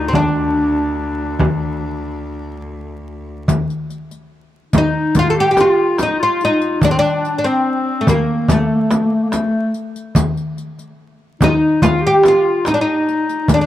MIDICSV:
0, 0, Header, 1, 7, 480
1, 0, Start_track
1, 0, Tempo, 834492
1, 83, Time_signature, 4, 2, 24, 8
1, 7858, End_track
2, 0, Start_track
2, 0, Title_t, "Oud"
2, 0, Program_c, 0, 24
2, 48, Note_on_c, 0, 60, 60
2, 85, Note_off_c, 0, 60, 0
2, 87, Note_on_c, 0, 62, 70
2, 1502, Note_off_c, 0, 62, 0
2, 2748, Note_on_c, 0, 63, 89
2, 2983, Note_off_c, 0, 63, 0
2, 2985, Note_on_c, 0, 65, 98
2, 3047, Note_off_c, 0, 65, 0
2, 3049, Note_on_c, 0, 69, 72
2, 3081, Note_off_c, 0, 69, 0
2, 3107, Note_on_c, 0, 67, 96
2, 3162, Note_off_c, 0, 67, 0
2, 3169, Note_on_c, 0, 67, 66
2, 3207, Note_off_c, 0, 67, 0
2, 3224, Note_on_c, 0, 65, 83
2, 3461, Note_off_c, 0, 65, 0
2, 3467, Note_on_c, 0, 63, 82
2, 3579, Note_off_c, 0, 63, 0
2, 3582, Note_on_c, 0, 65, 88
2, 3696, Note_off_c, 0, 65, 0
2, 3708, Note_on_c, 0, 63, 86
2, 3935, Note_off_c, 0, 63, 0
2, 3938, Note_on_c, 0, 62, 97
2, 3972, Note_off_c, 0, 62, 0
2, 3975, Note_on_c, 0, 60, 75
2, 4010, Note_off_c, 0, 60, 0
2, 4020, Note_on_c, 0, 62, 100
2, 4241, Note_off_c, 0, 62, 0
2, 4248, Note_on_c, 0, 62, 63
2, 4282, Note_on_c, 0, 60, 77
2, 4286, Note_off_c, 0, 62, 0
2, 4604, Note_off_c, 0, 60, 0
2, 4607, Note_on_c, 0, 57, 57
2, 4646, Note_off_c, 0, 57, 0
2, 4655, Note_on_c, 0, 58, 82
2, 4896, Note_off_c, 0, 58, 0
2, 4898, Note_on_c, 0, 57, 69
2, 5589, Note_off_c, 0, 57, 0
2, 6578, Note_on_c, 0, 63, 91
2, 6800, Note_off_c, 0, 63, 0
2, 6802, Note_on_c, 0, 65, 95
2, 6915, Note_off_c, 0, 65, 0
2, 6940, Note_on_c, 0, 67, 95
2, 7056, Note_off_c, 0, 67, 0
2, 7064, Note_on_c, 0, 65, 86
2, 7278, Note_off_c, 0, 65, 0
2, 7291, Note_on_c, 0, 63, 86
2, 7326, Note_off_c, 0, 63, 0
2, 7328, Note_on_c, 0, 62, 74
2, 7366, Note_off_c, 0, 62, 0
2, 7370, Note_on_c, 0, 63, 81
2, 7777, Note_off_c, 0, 63, 0
2, 7788, Note_on_c, 0, 62, 77
2, 7816, Note_off_c, 0, 62, 0
2, 7830, Note_on_c, 0, 62, 52
2, 7858, Note_off_c, 0, 62, 0
2, 7858, End_track
3, 0, Start_track
3, 0, Title_t, "Clarinet"
3, 0, Program_c, 1, 71
3, 0, Note_on_c, 1, 63, 76
3, 76, Note_on_c, 1, 62, 68
3, 85, Note_off_c, 1, 63, 0
3, 1520, Note_off_c, 1, 62, 0
3, 2718, Note_on_c, 1, 63, 76
3, 2969, Note_on_c, 1, 65, 87
3, 2978, Note_off_c, 1, 63, 0
3, 3079, Note_on_c, 1, 67, 85
3, 3088, Note_off_c, 1, 65, 0
3, 3199, Note_on_c, 1, 65, 85
3, 3208, Note_off_c, 1, 67, 0
3, 3439, Note_on_c, 1, 63, 84
3, 3447, Note_off_c, 1, 65, 0
3, 3560, Note_off_c, 1, 63, 0
3, 3563, Note_on_c, 1, 65, 83
3, 3916, Note_on_c, 1, 62, 81
3, 3924, Note_off_c, 1, 65, 0
3, 4001, Note_off_c, 1, 62, 0
3, 4008, Note_on_c, 1, 62, 73
3, 4292, Note_on_c, 1, 60, 84
3, 4301, Note_off_c, 1, 62, 0
3, 4649, Note_on_c, 1, 58, 69
3, 4658, Note_off_c, 1, 60, 0
3, 4901, Note_on_c, 1, 57, 56
3, 4909, Note_off_c, 1, 58, 0
3, 4941, Note_on_c, 1, 58, 58
3, 4949, Note_off_c, 1, 57, 0
3, 4987, Note_on_c, 1, 57, 58
3, 4996, Note_off_c, 1, 58, 0
3, 5029, Note_on_c, 1, 58, 56
3, 5037, Note_off_c, 1, 57, 0
3, 5067, Note_on_c, 1, 57, 55
3, 5076, Note_off_c, 1, 58, 0
3, 5119, Note_on_c, 1, 58, 55
3, 5128, Note_off_c, 1, 57, 0
3, 5166, Note_on_c, 1, 57, 55
3, 5175, Note_off_c, 1, 58, 0
3, 5209, Note_on_c, 1, 58, 54
3, 5218, Note_off_c, 1, 57, 0
3, 5260, Note_on_c, 1, 57, 54
3, 5269, Note_off_c, 1, 58, 0
3, 5309, Note_on_c, 1, 58, 58
3, 5318, Note_off_c, 1, 57, 0
3, 5346, Note_on_c, 1, 57, 72
3, 5354, Note_off_c, 1, 58, 0
3, 5604, Note_off_c, 1, 57, 0
3, 6558, Note_on_c, 1, 63, 74
3, 6602, Note_on_c, 1, 65, 57
3, 6610, Note_off_c, 1, 63, 0
3, 6644, Note_on_c, 1, 63, 68
3, 6652, Note_off_c, 1, 65, 0
3, 6799, Note_off_c, 1, 63, 0
3, 6802, Note_on_c, 1, 65, 87
3, 6911, Note_on_c, 1, 67, 83
3, 6920, Note_off_c, 1, 65, 0
3, 7042, Note_on_c, 1, 65, 79
3, 7050, Note_off_c, 1, 67, 0
3, 7291, Note_on_c, 1, 63, 76
3, 7300, Note_off_c, 1, 65, 0
3, 7359, Note_off_c, 1, 63, 0
3, 7362, Note_on_c, 1, 63, 80
3, 7761, Note_on_c, 1, 62, 79
3, 7770, Note_off_c, 1, 63, 0
3, 7858, Note_off_c, 1, 62, 0
3, 7858, End_track
4, 0, Start_track
4, 0, Title_t, "Cello"
4, 0, Program_c, 2, 42
4, 0, Note_on_c, 2, 38, 72
4, 2055, Note_off_c, 2, 38, 0
4, 7858, End_track
5, 0, Start_track
5, 0, Title_t, "Darbuka"
5, 77, Note_on_c, 9, 64, 85
5, 135, Note_off_c, 9, 64, 0
5, 327, Note_on_c, 9, 62, 26
5, 384, Note_off_c, 9, 62, 0
5, 446, Note_on_c, 9, 62, 24
5, 503, Note_off_c, 9, 62, 0
5, 802, Note_on_c, 9, 64, 89
5, 860, Note_off_c, 9, 64, 0
5, 2002, Note_on_c, 9, 64, 89
5, 2060, Note_off_c, 9, 64, 0
5, 2242, Note_on_c, 9, 62, 26
5, 2299, Note_off_c, 9, 62, 0
5, 2365, Note_on_c, 9, 62, 25
5, 2422, Note_off_c, 9, 62, 0
5, 2722, Note_on_c, 9, 64, 92
5, 2779, Note_off_c, 9, 64, 0
5, 2962, Note_on_c, 9, 64, 95
5, 3020, Note_off_c, 9, 64, 0
5, 3203, Note_on_c, 9, 63, 63
5, 3260, Note_off_c, 9, 63, 0
5, 3441, Note_on_c, 9, 63, 59
5, 3499, Note_off_c, 9, 63, 0
5, 3920, Note_on_c, 9, 64, 118
5, 3978, Note_off_c, 9, 64, 0
5, 4157, Note_on_c, 9, 62, 24
5, 4215, Note_off_c, 9, 62, 0
5, 4279, Note_on_c, 9, 62, 28
5, 4337, Note_off_c, 9, 62, 0
5, 4642, Note_on_c, 9, 64, 101
5, 4699, Note_off_c, 9, 64, 0
5, 4880, Note_on_c, 9, 64, 100
5, 4938, Note_off_c, 9, 64, 0
5, 5123, Note_on_c, 9, 63, 68
5, 5180, Note_off_c, 9, 63, 0
5, 5361, Note_on_c, 9, 63, 64
5, 5418, Note_off_c, 9, 63, 0
5, 5838, Note_on_c, 9, 64, 104
5, 5895, Note_off_c, 9, 64, 0
5, 6082, Note_on_c, 9, 62, 25
5, 6140, Note_off_c, 9, 62, 0
5, 6204, Note_on_c, 9, 62, 25
5, 6262, Note_off_c, 9, 62, 0
5, 6560, Note_on_c, 9, 64, 95
5, 6618, Note_off_c, 9, 64, 0
5, 6799, Note_on_c, 9, 64, 95
5, 6856, Note_off_c, 9, 64, 0
5, 7037, Note_on_c, 9, 63, 72
5, 7095, Note_off_c, 9, 63, 0
5, 7276, Note_on_c, 9, 63, 70
5, 7334, Note_off_c, 9, 63, 0
5, 7755, Note_on_c, 9, 64, 104
5, 7813, Note_off_c, 9, 64, 0
5, 7858, End_track
6, 0, Start_track
6, 0, Title_t, "Frame drum"
6, 82, Note_on_c, 9, 64, 76
6, 140, Note_off_c, 9, 64, 0
6, 806, Note_on_c, 9, 64, 89
6, 864, Note_off_c, 9, 64, 0
6, 2005, Note_on_c, 9, 64, 78
6, 2063, Note_off_c, 9, 64, 0
6, 2729, Note_on_c, 9, 64, 91
6, 2787, Note_off_c, 9, 64, 0
6, 2969, Note_on_c, 9, 64, 83
6, 3026, Note_off_c, 9, 64, 0
6, 3203, Note_on_c, 9, 64, 74
6, 3261, Note_off_c, 9, 64, 0
6, 3447, Note_on_c, 9, 64, 71
6, 3505, Note_off_c, 9, 64, 0
6, 3928, Note_on_c, 9, 64, 78
6, 3985, Note_off_c, 9, 64, 0
6, 4643, Note_on_c, 9, 64, 88
6, 4701, Note_off_c, 9, 64, 0
6, 4884, Note_on_c, 9, 64, 90
6, 4942, Note_off_c, 9, 64, 0
6, 5125, Note_on_c, 9, 64, 70
6, 5183, Note_off_c, 9, 64, 0
6, 5371, Note_on_c, 9, 64, 72
6, 5428, Note_off_c, 9, 64, 0
6, 5845, Note_on_c, 9, 64, 95
6, 5902, Note_off_c, 9, 64, 0
6, 6568, Note_on_c, 9, 64, 97
6, 6625, Note_off_c, 9, 64, 0
6, 6811, Note_on_c, 9, 64, 95
6, 6868, Note_off_c, 9, 64, 0
6, 7047, Note_on_c, 9, 64, 75
6, 7105, Note_off_c, 9, 64, 0
6, 7288, Note_on_c, 9, 64, 76
6, 7345, Note_off_c, 9, 64, 0
6, 7760, Note_on_c, 9, 64, 95
6, 7817, Note_off_c, 9, 64, 0
6, 7858, End_track
7, 0, Start_track
7, 0, Title_t, "Riq"
7, 2007, Note_on_c, 9, 54, 66
7, 2065, Note_off_c, 9, 54, 0
7, 2129, Note_on_c, 9, 54, 17
7, 2187, Note_off_c, 9, 54, 0
7, 2245, Note_on_c, 9, 54, 17
7, 2303, Note_off_c, 9, 54, 0
7, 2366, Note_on_c, 9, 54, 18
7, 2423, Note_off_c, 9, 54, 0
7, 2722, Note_on_c, 9, 54, 68
7, 2779, Note_off_c, 9, 54, 0
7, 2961, Note_on_c, 9, 54, 63
7, 3018, Note_off_c, 9, 54, 0
7, 3206, Note_on_c, 9, 54, 51
7, 3263, Note_off_c, 9, 54, 0
7, 3445, Note_on_c, 9, 54, 51
7, 3502, Note_off_c, 9, 54, 0
7, 3685, Note_on_c, 9, 54, 19
7, 3743, Note_off_c, 9, 54, 0
7, 3805, Note_on_c, 9, 54, 22
7, 3863, Note_off_c, 9, 54, 0
7, 3927, Note_on_c, 9, 54, 64
7, 3985, Note_off_c, 9, 54, 0
7, 4048, Note_on_c, 9, 54, 18
7, 4105, Note_off_c, 9, 54, 0
7, 4170, Note_on_c, 9, 54, 21
7, 4227, Note_off_c, 9, 54, 0
7, 4290, Note_on_c, 9, 54, 20
7, 4348, Note_off_c, 9, 54, 0
7, 4648, Note_on_c, 9, 54, 67
7, 4705, Note_off_c, 9, 54, 0
7, 4886, Note_on_c, 9, 54, 65
7, 4944, Note_off_c, 9, 54, 0
7, 5126, Note_on_c, 9, 54, 51
7, 5184, Note_off_c, 9, 54, 0
7, 5365, Note_on_c, 9, 54, 54
7, 5422, Note_off_c, 9, 54, 0
7, 5604, Note_on_c, 9, 54, 19
7, 5661, Note_off_c, 9, 54, 0
7, 5728, Note_on_c, 9, 54, 21
7, 5786, Note_off_c, 9, 54, 0
7, 5843, Note_on_c, 9, 54, 71
7, 5901, Note_off_c, 9, 54, 0
7, 5967, Note_on_c, 9, 54, 18
7, 6024, Note_off_c, 9, 54, 0
7, 6086, Note_on_c, 9, 54, 20
7, 6144, Note_off_c, 9, 54, 0
7, 6207, Note_on_c, 9, 54, 19
7, 6265, Note_off_c, 9, 54, 0
7, 6567, Note_on_c, 9, 54, 71
7, 6624, Note_off_c, 9, 54, 0
7, 6806, Note_on_c, 9, 54, 65
7, 6864, Note_off_c, 9, 54, 0
7, 7049, Note_on_c, 9, 54, 43
7, 7107, Note_off_c, 9, 54, 0
7, 7284, Note_on_c, 9, 54, 46
7, 7341, Note_off_c, 9, 54, 0
7, 7526, Note_on_c, 9, 54, 17
7, 7584, Note_off_c, 9, 54, 0
7, 7646, Note_on_c, 9, 54, 19
7, 7704, Note_off_c, 9, 54, 0
7, 7761, Note_on_c, 9, 54, 75
7, 7818, Note_off_c, 9, 54, 0
7, 7858, End_track
0, 0, End_of_file